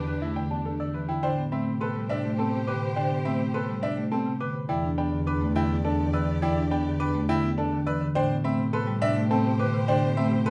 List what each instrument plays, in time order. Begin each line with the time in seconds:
Already playing: double bass E2, marimba D3, string section D4 G4, grand piano B4, celesta D6
0.07 marimba D4, grand piano B4
0.22 marimba A3, grand piano E4, celesta E5
0.36 marimba D3, grand piano G5
0.51 marimba B3, grand piano D4, celesta A5
0.66 marimba D4, grand piano A4
0.80 marimba D3, grand piano D5, celesta E6
0.94 marimba E3, grand piano B4
1.09 marimba D3, grand piano E4, celesta G5
1.23 double bass A2, marimba D3, grand piano D4 C5, string section G4 C5, celesta G5
1.38 marimba B3
1.52 marimba A3, grand piano C4 E5, celesta B5
1.67 marimba C3
1.81 marimba B3, grand piano A4 B4, celesta C6
1.96 marimba G3
2.09 marimba C3, grand piano D4 E5, celesta E5
2.25 marimba A3
2.38 marimba B3, grand piano C4 A4, celesta A5
2.53 marimba C3
2.67 marimba D3, grand piano B4, celesta D6
2.83 marimba C3
2.96 marimba D3, grand piano D4 C5, celesta G5
3.11 marimba B3
3.25 marimba A3, grand piano C4 E5, celesta B5
3.41 marimba C3
3.54 marimba B3, grand piano A4 B4, celesta C6
3.69 marimba G3
3.83 marimba C3, grand piano D4 E5, celesta E5
3.97 marimba A3
4.12 grand piano C4 A4, celesta A5
4.26 marimba C3
4.40 marimba D3, grand piano B4, celesta D6
4.55 marimba C3
4.69 double bass E2, marimba E3, grand piano E4 D5, string section G4 D5, celesta G5
4.84 marimba D4
4.98 marimba B3, grand piano D4 G5, celesta B5
5.12 marimba D3
5.27 marimba D4, grand piano B4, celesta D6
5.41 marimba A3
5.56 marimba D3, grand piano E4 G5, celesta E5
5.70 marimba B3
5.85 grand piano D4 A4, marimba D4, celesta A5
5.99 marimba D3
6.13 marimba E3, grand piano B4 D5, celesta E6
6.28 marimba D3
6.42 marimba E3, grand piano E4 D5, celesta G5
6.57 marimba D4
6.71 marimba B3, grand piano D4 G5, celesta B5
6.86 marimba D3
7.00 marimba D4, grand piano B4, celesta D6
7.14 marimba A3
7.29 marimba D3, grand piano E4 G5, celesta E5
7.43 marimba B3
7.58 grand piano D4 A4, marimba D4, celesta A5
7.72 marimba D3
7.86 marimba E3, grand piano B4 D5, celesta E6
8.01 marimba D3
8.15 double bass A2, marimba D3, grand piano D4 C5, string section G4 C5, celesta G5
8.30 marimba B3
8.44 marimba A3, grand piano C4 E5, celesta B5
8.58 marimba C3
8.73 marimba B3, grand piano A4 B4, celesta C6
8.87 marimba G3
9.02 marimba C3, grand piano D4 E5, celesta E5
9.16 marimba A3
9.31 marimba B3, grand piano C4 A4, celesta A5
9.45 marimba C3
9.59 marimba D3, grand piano B4, celesta D6
9.74 marimba C3
9.88 marimba D3, grand piano D4 C5, celesta G5
10.03 marimba B3
10.17 marimba A3, grand piano C4 E5, celesta B5
10.32 marimba C3
10.46 grand piano A4 B4, celesta C6